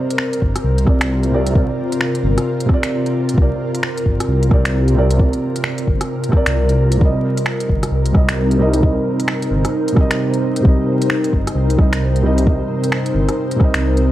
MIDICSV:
0, 0, Header, 1, 5, 480
1, 0, Start_track
1, 0, Key_signature, -3, "minor"
1, 0, Tempo, 454545
1, 1645, Time_signature, 4, 2, 24, 8
1, 14910, End_track
2, 0, Start_track
2, 0, Title_t, "Felt piano"
2, 0, Program_c, 0, 0
2, 0, Control_c, 0, 64, 127
2, 0, Note_on_c, 0, 48, 80
2, 0, Note_on_c, 0, 60, 73
2, 0, Note_on_c, 0, 70, 73
2, 0, Note_on_c, 0, 74, 85
2, 878, Note_off_c, 0, 48, 0
2, 892, Note_off_c, 0, 60, 0
2, 897, Note_on_c, 0, 48, 78
2, 905, Note_off_c, 0, 70, 0
2, 912, Note_on_c, 0, 60, 69
2, 920, Note_off_c, 0, 74, 0
2, 927, Note_on_c, 0, 70, 67
2, 940, Note_on_c, 0, 74, 82
2, 1022, Note_off_c, 0, 48, 0
2, 1029, Note_off_c, 0, 60, 0
2, 1036, Note_off_c, 0, 70, 0
2, 1043, Note_off_c, 0, 74, 0
2, 1376, Note_on_c, 0, 48, 86
2, 1390, Note_on_c, 0, 60, 79
2, 1404, Note_on_c, 0, 70, 78
2, 1420, Note_on_c, 0, 74, 98
2, 1605, Note_off_c, 0, 48, 0
2, 1616, Note_off_c, 0, 60, 0
2, 1621, Note_on_c, 0, 48, 68
2, 1623, Note_off_c, 0, 70, 0
2, 1631, Note_off_c, 0, 74, 0
2, 1636, Note_on_c, 0, 60, 65
2, 1649, Note_on_c, 0, 70, 64
2, 1663, Note_on_c, 0, 74, 78
2, 1743, Note_off_c, 0, 48, 0
2, 1751, Note_off_c, 0, 60, 0
2, 1757, Note_off_c, 0, 70, 0
2, 1764, Note_off_c, 0, 74, 0
2, 2807, Note_on_c, 0, 48, 90
2, 2834, Note_on_c, 0, 60, 83
2, 2862, Note_on_c, 0, 70, 82
2, 2892, Note_on_c, 0, 74, 100
2, 3508, Note_off_c, 0, 48, 0
2, 3524, Note_on_c, 0, 48, 79
2, 3537, Note_off_c, 0, 60, 0
2, 3552, Note_off_c, 0, 70, 0
2, 3553, Note_on_c, 0, 60, 74
2, 3567, Note_off_c, 0, 74, 0
2, 3580, Note_on_c, 0, 70, 75
2, 3609, Note_on_c, 0, 74, 87
2, 4723, Note_off_c, 0, 48, 0
2, 4738, Note_off_c, 0, 60, 0
2, 4745, Note_on_c, 0, 48, 75
2, 4751, Note_off_c, 0, 70, 0
2, 4762, Note_on_c, 0, 60, 71
2, 4766, Note_off_c, 0, 74, 0
2, 4774, Note_on_c, 0, 70, 71
2, 4788, Note_on_c, 0, 74, 87
2, 4866, Note_off_c, 0, 48, 0
2, 4874, Note_off_c, 0, 60, 0
2, 4880, Note_off_c, 0, 70, 0
2, 4887, Note_off_c, 0, 74, 0
2, 5219, Note_on_c, 0, 48, 89
2, 5237, Note_on_c, 0, 60, 79
2, 5251, Note_on_c, 0, 70, 80
2, 5265, Note_on_c, 0, 74, 99
2, 5445, Note_off_c, 0, 48, 0
2, 5459, Note_off_c, 0, 60, 0
2, 5461, Note_on_c, 0, 48, 72
2, 5466, Note_off_c, 0, 70, 0
2, 5474, Note_off_c, 0, 74, 0
2, 5475, Note_on_c, 0, 60, 65
2, 5489, Note_on_c, 0, 70, 64
2, 5503, Note_on_c, 0, 74, 76
2, 5583, Note_off_c, 0, 48, 0
2, 5590, Note_off_c, 0, 60, 0
2, 5597, Note_off_c, 0, 70, 0
2, 5604, Note_off_c, 0, 74, 0
2, 6641, Note_on_c, 0, 48, 90
2, 6666, Note_on_c, 0, 60, 79
2, 6694, Note_on_c, 0, 70, 80
2, 6725, Note_on_c, 0, 74, 97
2, 7345, Note_off_c, 0, 48, 0
2, 7361, Note_on_c, 0, 48, 80
2, 7374, Note_off_c, 0, 60, 0
2, 7388, Note_off_c, 0, 70, 0
2, 7390, Note_on_c, 0, 55, 74
2, 7404, Note_off_c, 0, 74, 0
2, 7417, Note_on_c, 0, 70, 74
2, 7422, Control_c, 0, 64, 0
2, 7444, Note_on_c, 0, 75, 89
2, 7629, Control_c, 0, 64, 127
2, 8562, Note_off_c, 0, 48, 0
2, 8576, Note_off_c, 0, 55, 0
2, 8579, Note_on_c, 0, 48, 74
2, 8590, Note_off_c, 0, 70, 0
2, 8592, Note_on_c, 0, 55, 70
2, 8603, Note_off_c, 0, 75, 0
2, 8606, Note_on_c, 0, 70, 70
2, 8621, Note_on_c, 0, 75, 86
2, 8703, Note_off_c, 0, 48, 0
2, 8709, Note_off_c, 0, 55, 0
2, 8716, Note_off_c, 0, 70, 0
2, 8723, Note_off_c, 0, 75, 0
2, 9057, Note_on_c, 0, 48, 88
2, 9073, Note_on_c, 0, 55, 78
2, 9084, Note_on_c, 0, 70, 80
2, 9099, Note_on_c, 0, 75, 95
2, 9280, Note_off_c, 0, 48, 0
2, 9295, Note_off_c, 0, 55, 0
2, 9295, Note_on_c, 0, 48, 70
2, 9303, Note_off_c, 0, 70, 0
2, 9311, Note_off_c, 0, 75, 0
2, 9311, Note_on_c, 0, 55, 67
2, 9325, Note_on_c, 0, 70, 63
2, 9337, Note_on_c, 0, 75, 79
2, 9420, Note_off_c, 0, 48, 0
2, 9429, Note_off_c, 0, 55, 0
2, 9435, Note_off_c, 0, 70, 0
2, 9442, Note_off_c, 0, 75, 0
2, 10479, Note_on_c, 0, 48, 90
2, 10505, Note_on_c, 0, 55, 83
2, 10535, Note_on_c, 0, 70, 80
2, 10564, Note_on_c, 0, 75, 100
2, 11183, Note_off_c, 0, 48, 0
2, 11199, Note_on_c, 0, 48, 79
2, 11208, Note_off_c, 0, 55, 0
2, 11224, Note_on_c, 0, 55, 75
2, 11229, Note_off_c, 0, 70, 0
2, 11244, Note_off_c, 0, 75, 0
2, 11253, Note_on_c, 0, 70, 73
2, 11282, Note_on_c, 0, 75, 88
2, 12401, Note_off_c, 0, 48, 0
2, 12413, Note_off_c, 0, 55, 0
2, 12422, Note_on_c, 0, 48, 79
2, 12428, Note_off_c, 0, 70, 0
2, 12435, Note_on_c, 0, 55, 72
2, 12442, Note_off_c, 0, 75, 0
2, 12449, Note_on_c, 0, 70, 69
2, 12464, Note_on_c, 0, 75, 86
2, 12544, Note_off_c, 0, 48, 0
2, 12550, Note_off_c, 0, 55, 0
2, 12557, Note_off_c, 0, 70, 0
2, 12565, Note_off_c, 0, 75, 0
2, 12902, Note_on_c, 0, 48, 87
2, 12915, Note_on_c, 0, 55, 82
2, 12932, Note_on_c, 0, 70, 82
2, 12948, Note_on_c, 0, 75, 97
2, 13125, Note_off_c, 0, 48, 0
2, 13138, Note_off_c, 0, 55, 0
2, 13141, Note_on_c, 0, 48, 74
2, 13147, Note_off_c, 0, 70, 0
2, 13154, Note_on_c, 0, 55, 65
2, 13155, Note_off_c, 0, 75, 0
2, 13168, Note_on_c, 0, 70, 66
2, 13181, Note_on_c, 0, 75, 79
2, 13263, Note_off_c, 0, 48, 0
2, 13270, Note_off_c, 0, 55, 0
2, 13277, Note_off_c, 0, 70, 0
2, 13283, Note_off_c, 0, 75, 0
2, 14320, Note_on_c, 0, 48, 90
2, 14346, Note_on_c, 0, 55, 83
2, 14376, Note_on_c, 0, 70, 83
2, 14403, Note_on_c, 0, 75, 97
2, 14910, Note_off_c, 0, 48, 0
2, 14910, Note_off_c, 0, 55, 0
2, 14910, Note_off_c, 0, 70, 0
2, 14910, Note_off_c, 0, 75, 0
2, 14910, End_track
3, 0, Start_track
3, 0, Title_t, "Ambient pad"
3, 0, Program_c, 1, 92
3, 0, Note_on_c, 1, 48, 76
3, 0, Note_on_c, 1, 70, 82
3, 0, Note_on_c, 1, 72, 71
3, 6, Note_on_c, 1, 60, 72
3, 161, Note_on_c, 1, 65, 85
3, 7394, Note_off_c, 1, 48, 0
3, 7402, Note_off_c, 1, 72, 0
3, 7407, Note_on_c, 1, 48, 85
3, 7698, Note_on_c, 1, 63, 79
3, 7865, Note_on_c, 1, 72, 68
3, 8572, Note_off_c, 1, 65, 0
3, 14910, Note_off_c, 1, 48, 0
3, 14910, Note_off_c, 1, 60, 0
3, 14910, Note_off_c, 1, 63, 0
3, 14910, Note_off_c, 1, 70, 0
3, 14910, Note_off_c, 1, 72, 0
3, 14910, End_track
4, 0, Start_track
4, 0, Title_t, "Detuned saw bass"
4, 0, Program_c, 2, 39
4, 442, Note_on_c, 2, 31, 86
4, 582, Note_off_c, 2, 31, 0
4, 678, Note_on_c, 2, 36, 83
4, 1630, Note_off_c, 2, 36, 0
4, 1640, Note_on_c, 2, 36, 95
4, 1782, Note_off_c, 2, 36, 0
4, 2362, Note_on_c, 2, 31, 92
4, 2503, Note_off_c, 2, 31, 0
4, 3564, Note_on_c, 2, 36, 95
4, 3703, Note_off_c, 2, 36, 0
4, 4286, Note_on_c, 2, 31, 87
4, 4424, Note_off_c, 2, 31, 0
4, 4526, Note_on_c, 2, 36, 87
4, 5474, Note_off_c, 2, 36, 0
4, 5484, Note_on_c, 2, 36, 96
4, 5624, Note_off_c, 2, 36, 0
4, 6206, Note_on_c, 2, 31, 87
4, 6345, Note_off_c, 2, 31, 0
4, 6830, Note_on_c, 2, 36, 97
4, 7391, Note_off_c, 2, 36, 0
4, 7404, Note_on_c, 2, 36, 97
4, 7544, Note_off_c, 2, 36, 0
4, 8124, Note_on_c, 2, 31, 88
4, 8264, Note_off_c, 2, 31, 0
4, 8360, Note_on_c, 2, 36, 84
4, 9311, Note_off_c, 2, 36, 0
4, 9325, Note_on_c, 2, 36, 96
4, 9464, Note_off_c, 2, 36, 0
4, 10044, Note_on_c, 2, 31, 88
4, 10184, Note_off_c, 2, 31, 0
4, 11244, Note_on_c, 2, 36, 96
4, 11384, Note_off_c, 2, 36, 0
4, 11966, Note_on_c, 2, 31, 89
4, 12105, Note_off_c, 2, 31, 0
4, 12201, Note_on_c, 2, 36, 84
4, 13152, Note_off_c, 2, 36, 0
4, 13165, Note_on_c, 2, 36, 95
4, 13304, Note_off_c, 2, 36, 0
4, 13881, Note_on_c, 2, 31, 92
4, 14022, Note_off_c, 2, 31, 0
4, 14509, Note_on_c, 2, 36, 98
4, 14910, Note_off_c, 2, 36, 0
4, 14910, End_track
5, 0, Start_track
5, 0, Title_t, "Drums"
5, 110, Note_on_c, 9, 42, 49
5, 192, Note_on_c, 9, 26, 93
5, 215, Note_off_c, 9, 42, 0
5, 298, Note_off_c, 9, 26, 0
5, 349, Note_on_c, 9, 42, 40
5, 442, Note_on_c, 9, 36, 60
5, 455, Note_off_c, 9, 42, 0
5, 547, Note_off_c, 9, 36, 0
5, 587, Note_on_c, 9, 37, 51
5, 587, Note_on_c, 9, 42, 53
5, 692, Note_off_c, 9, 37, 0
5, 692, Note_off_c, 9, 42, 0
5, 825, Note_on_c, 9, 42, 39
5, 915, Note_on_c, 9, 37, 33
5, 921, Note_on_c, 9, 36, 100
5, 931, Note_off_c, 9, 42, 0
5, 1020, Note_off_c, 9, 37, 0
5, 1027, Note_off_c, 9, 36, 0
5, 1067, Note_on_c, 9, 26, 103
5, 1067, Note_on_c, 9, 42, 51
5, 1172, Note_off_c, 9, 26, 0
5, 1172, Note_off_c, 9, 42, 0
5, 1303, Note_on_c, 9, 42, 28
5, 1408, Note_off_c, 9, 42, 0
5, 1547, Note_on_c, 9, 42, 54
5, 1641, Note_on_c, 9, 36, 109
5, 1652, Note_off_c, 9, 42, 0
5, 1747, Note_off_c, 9, 36, 0
5, 2029, Note_on_c, 9, 42, 51
5, 2118, Note_on_c, 9, 26, 92
5, 2135, Note_off_c, 9, 42, 0
5, 2224, Note_off_c, 9, 26, 0
5, 2269, Note_on_c, 9, 42, 41
5, 2375, Note_off_c, 9, 42, 0
5, 2509, Note_on_c, 9, 37, 52
5, 2509, Note_on_c, 9, 42, 54
5, 2615, Note_off_c, 9, 37, 0
5, 2615, Note_off_c, 9, 42, 0
5, 2750, Note_on_c, 9, 42, 41
5, 2840, Note_on_c, 9, 37, 35
5, 2844, Note_on_c, 9, 36, 99
5, 2855, Note_off_c, 9, 42, 0
5, 2946, Note_off_c, 9, 37, 0
5, 2950, Note_off_c, 9, 36, 0
5, 2990, Note_on_c, 9, 26, 93
5, 2990, Note_on_c, 9, 42, 52
5, 3096, Note_off_c, 9, 26, 0
5, 3096, Note_off_c, 9, 42, 0
5, 3233, Note_on_c, 9, 42, 29
5, 3339, Note_off_c, 9, 42, 0
5, 3473, Note_on_c, 9, 42, 52
5, 3566, Note_on_c, 9, 36, 108
5, 3578, Note_off_c, 9, 42, 0
5, 3671, Note_off_c, 9, 36, 0
5, 3955, Note_on_c, 9, 42, 53
5, 4044, Note_on_c, 9, 26, 94
5, 4061, Note_off_c, 9, 42, 0
5, 4150, Note_off_c, 9, 26, 0
5, 4197, Note_on_c, 9, 42, 42
5, 4285, Note_on_c, 9, 36, 55
5, 4303, Note_off_c, 9, 42, 0
5, 4391, Note_off_c, 9, 36, 0
5, 4438, Note_on_c, 9, 37, 53
5, 4438, Note_on_c, 9, 42, 54
5, 4544, Note_off_c, 9, 37, 0
5, 4544, Note_off_c, 9, 42, 0
5, 4676, Note_on_c, 9, 42, 43
5, 4763, Note_on_c, 9, 37, 36
5, 4766, Note_on_c, 9, 36, 94
5, 4781, Note_off_c, 9, 42, 0
5, 4869, Note_off_c, 9, 37, 0
5, 4871, Note_off_c, 9, 36, 0
5, 4913, Note_on_c, 9, 26, 94
5, 4913, Note_on_c, 9, 42, 52
5, 5019, Note_off_c, 9, 26, 0
5, 5019, Note_off_c, 9, 42, 0
5, 5153, Note_on_c, 9, 42, 29
5, 5258, Note_off_c, 9, 42, 0
5, 5391, Note_on_c, 9, 42, 55
5, 5485, Note_on_c, 9, 36, 109
5, 5497, Note_off_c, 9, 42, 0
5, 5590, Note_off_c, 9, 36, 0
5, 5630, Note_on_c, 9, 42, 30
5, 5736, Note_off_c, 9, 42, 0
5, 5868, Note_on_c, 9, 42, 55
5, 5954, Note_on_c, 9, 26, 95
5, 5974, Note_off_c, 9, 42, 0
5, 6059, Note_off_c, 9, 26, 0
5, 6103, Note_on_c, 9, 42, 44
5, 6204, Note_on_c, 9, 36, 58
5, 6209, Note_off_c, 9, 42, 0
5, 6310, Note_off_c, 9, 36, 0
5, 6345, Note_on_c, 9, 37, 55
5, 6345, Note_on_c, 9, 42, 56
5, 6450, Note_off_c, 9, 37, 0
5, 6450, Note_off_c, 9, 42, 0
5, 6586, Note_on_c, 9, 42, 43
5, 6674, Note_on_c, 9, 37, 37
5, 6685, Note_on_c, 9, 36, 93
5, 6691, Note_off_c, 9, 42, 0
5, 6779, Note_off_c, 9, 37, 0
5, 6790, Note_off_c, 9, 36, 0
5, 6825, Note_on_c, 9, 26, 98
5, 6825, Note_on_c, 9, 42, 54
5, 6930, Note_off_c, 9, 26, 0
5, 6930, Note_off_c, 9, 42, 0
5, 7066, Note_on_c, 9, 42, 30
5, 7171, Note_off_c, 9, 42, 0
5, 7304, Note_on_c, 9, 42, 58
5, 7404, Note_on_c, 9, 36, 115
5, 7410, Note_off_c, 9, 42, 0
5, 7510, Note_off_c, 9, 36, 0
5, 7787, Note_on_c, 9, 42, 55
5, 7875, Note_on_c, 9, 26, 99
5, 7892, Note_off_c, 9, 42, 0
5, 7981, Note_off_c, 9, 26, 0
5, 8029, Note_on_c, 9, 42, 45
5, 8124, Note_on_c, 9, 36, 61
5, 8134, Note_off_c, 9, 42, 0
5, 8230, Note_off_c, 9, 36, 0
5, 8268, Note_on_c, 9, 37, 55
5, 8268, Note_on_c, 9, 42, 58
5, 8374, Note_off_c, 9, 37, 0
5, 8374, Note_off_c, 9, 42, 0
5, 8507, Note_on_c, 9, 42, 46
5, 8601, Note_on_c, 9, 37, 36
5, 8605, Note_on_c, 9, 36, 100
5, 8613, Note_off_c, 9, 42, 0
5, 8707, Note_off_c, 9, 37, 0
5, 8710, Note_off_c, 9, 36, 0
5, 8750, Note_on_c, 9, 26, 102
5, 8750, Note_on_c, 9, 42, 56
5, 8856, Note_off_c, 9, 26, 0
5, 8856, Note_off_c, 9, 42, 0
5, 8989, Note_on_c, 9, 42, 32
5, 9095, Note_off_c, 9, 42, 0
5, 9224, Note_on_c, 9, 42, 57
5, 9325, Note_on_c, 9, 36, 118
5, 9330, Note_off_c, 9, 42, 0
5, 9431, Note_off_c, 9, 36, 0
5, 9711, Note_on_c, 9, 42, 57
5, 9797, Note_on_c, 9, 26, 102
5, 9817, Note_off_c, 9, 42, 0
5, 9903, Note_off_c, 9, 26, 0
5, 9951, Note_on_c, 9, 42, 45
5, 10057, Note_off_c, 9, 42, 0
5, 10187, Note_on_c, 9, 37, 53
5, 10187, Note_on_c, 9, 42, 60
5, 10293, Note_off_c, 9, 37, 0
5, 10293, Note_off_c, 9, 42, 0
5, 10434, Note_on_c, 9, 42, 46
5, 10522, Note_on_c, 9, 37, 37
5, 10526, Note_on_c, 9, 36, 105
5, 10539, Note_off_c, 9, 42, 0
5, 10628, Note_off_c, 9, 37, 0
5, 10632, Note_off_c, 9, 36, 0
5, 10674, Note_on_c, 9, 26, 105
5, 10674, Note_on_c, 9, 42, 56
5, 10779, Note_off_c, 9, 26, 0
5, 10779, Note_off_c, 9, 42, 0
5, 10915, Note_on_c, 9, 42, 33
5, 11021, Note_off_c, 9, 42, 0
5, 11153, Note_on_c, 9, 42, 58
5, 11245, Note_on_c, 9, 36, 124
5, 11259, Note_off_c, 9, 42, 0
5, 11351, Note_off_c, 9, 36, 0
5, 11633, Note_on_c, 9, 42, 56
5, 11719, Note_on_c, 9, 26, 103
5, 11738, Note_off_c, 9, 42, 0
5, 11825, Note_off_c, 9, 26, 0
5, 11872, Note_on_c, 9, 42, 46
5, 11966, Note_on_c, 9, 36, 63
5, 11978, Note_off_c, 9, 42, 0
5, 12071, Note_off_c, 9, 36, 0
5, 12115, Note_on_c, 9, 37, 50
5, 12115, Note_on_c, 9, 42, 57
5, 12221, Note_off_c, 9, 37, 0
5, 12221, Note_off_c, 9, 42, 0
5, 12356, Note_on_c, 9, 42, 44
5, 12446, Note_on_c, 9, 36, 105
5, 12447, Note_on_c, 9, 37, 35
5, 12462, Note_off_c, 9, 42, 0
5, 12551, Note_off_c, 9, 36, 0
5, 12552, Note_off_c, 9, 37, 0
5, 12595, Note_on_c, 9, 26, 106
5, 12595, Note_on_c, 9, 42, 55
5, 12701, Note_off_c, 9, 26, 0
5, 12701, Note_off_c, 9, 42, 0
5, 12839, Note_on_c, 9, 42, 31
5, 12945, Note_off_c, 9, 42, 0
5, 13073, Note_on_c, 9, 42, 59
5, 13166, Note_on_c, 9, 36, 119
5, 13178, Note_off_c, 9, 42, 0
5, 13272, Note_off_c, 9, 36, 0
5, 13554, Note_on_c, 9, 42, 52
5, 13643, Note_on_c, 9, 26, 102
5, 13660, Note_off_c, 9, 42, 0
5, 13749, Note_off_c, 9, 26, 0
5, 13790, Note_on_c, 9, 42, 44
5, 13896, Note_off_c, 9, 42, 0
5, 14030, Note_on_c, 9, 37, 48
5, 14030, Note_on_c, 9, 42, 55
5, 14135, Note_off_c, 9, 37, 0
5, 14135, Note_off_c, 9, 42, 0
5, 14270, Note_on_c, 9, 42, 43
5, 14359, Note_on_c, 9, 37, 34
5, 14367, Note_on_c, 9, 36, 108
5, 14376, Note_off_c, 9, 42, 0
5, 14465, Note_off_c, 9, 37, 0
5, 14473, Note_off_c, 9, 36, 0
5, 14511, Note_on_c, 9, 26, 104
5, 14511, Note_on_c, 9, 42, 53
5, 14617, Note_off_c, 9, 26, 0
5, 14617, Note_off_c, 9, 42, 0
5, 14753, Note_on_c, 9, 42, 30
5, 14859, Note_off_c, 9, 42, 0
5, 14910, End_track
0, 0, End_of_file